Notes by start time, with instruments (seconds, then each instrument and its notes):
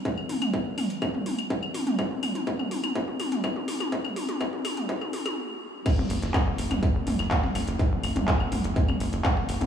0.05 kick, closed hi-hat, mid tom
0.18 claves
0.29 open hi-hat, mid tom
0.42 closed hi-hat, mid tom, claves
0.54 kick, closed hi-hat, mid tom
0.78 open hi-hat, mid tom, claves
0.90 closed hi-hat
1.02 kick, closed hi-hat, mid tom, claves
1.14 mid tom
1.26 open hi-hat, mid tom
1.39 closed hi-hat, claves
1.50 kick, closed hi-hat, mid tom
1.63 claves
1.74 open hi-hat, mid tom
1.87 closed hi-hat, mid tom
1.99 kick, closed hi-hat, mid tom, claves
2.11 mid tom
2.23 open hi-hat, mid tom, claves
2.35 closed hi-hat, mid tom
2.47 kick, closed hi-hat, mid tom
2.59 mid tom, claves
2.71 open hi-hat, mid tom
2.84 closed hi-hat, mid tom, claves
2.95 kick, closed hi-hat, mid tom
3.08 mid tom
3.20 open hi-hat, mid tom, claves
3.32 closed hi-hat, mid tom
3.44 kick, closed hi-hat, mid tom, claves
3.56 mid tom
3.68 open hi-hat, mid tom
3.80 closed hi-hat, mid tom, claves
3.92 kick, closed hi-hat, mid tom
4.05 mid tom, claves
4.16 open hi-hat, mid tom
4.29 closed hi-hat, mid tom
4.41 kick, closed hi-hat, mid tom, claves
4.53 mid tom
4.65 open hi-hat, mid tom, claves
4.77 closed hi-hat, mid tom
4.89 kick, closed hi-hat, mid tom
5.01 mid tom, claves
5.13 open hi-hat, mid tom
5.26 closed hi-hat, mid tom, claves
5.86 kick, closed hi-hat, crash, claves
5.98 analog synth bass F#1, mid tom
6.10 analog synth bass F#1, closed hi-hat, open hi-hat
6.22 analog synth bass F#1, snare, closed hi-hat
6.34 kick, snare, clap, closed hi-hat, mid tom, claves
6.47 analog synth bass F#1
6.58 analog synth bass F#1, closed hi-hat, open hi-hat
6.71 analog synth bass F#1, snare, closed hi-hat, mid tom, claves
6.83 kick, closed hi-hat
6.95 analog synth bass F#1
7.07 analog synth bass F#1, closed hi-hat, open hi-hat, mid tom
7.19 analog synth bass F#1, snare, closed hi-hat, claves
7.31 kick, snare, clap, closed hi-hat
7.43 analog synth bass F#1, snare, mid tom
7.55 analog synth bass F#1, open hi-hat, claves
7.68 analog synth bass F#1, closed hi-hat
7.79 kick, closed hi-hat, mid tom
7.92 analog synth bass F#1
8.03 analog synth bass F#1, closed hi-hat, open hi-hat, claves
8.16 analog synth bass F#1, closed hi-hat, mid tom
8.28 kick, snare, clap, closed hi-hat
8.40 analog synth bass F#1, claves
8.52 analog synth bass F#1, closed hi-hat, open hi-hat, mid tom
8.64 analog synth bass F#1, closed hi-hat
8.76 kick, closed hi-hat
8.89 analog synth bass F#1, mid tom, claves
9.00 analog synth bass F#1, closed hi-hat, open hi-hat
9.13 analog synth bass F#1, closed hi-hat
9.25 kick, snare, clap, closed hi-hat, mid tom, claves
9.37 analog synth bass F#1, snare
9.49 analog synth bass F#1, closed hi-hat, open hi-hat
9.61 analog synth bass F#1, closed hi-hat, mid tom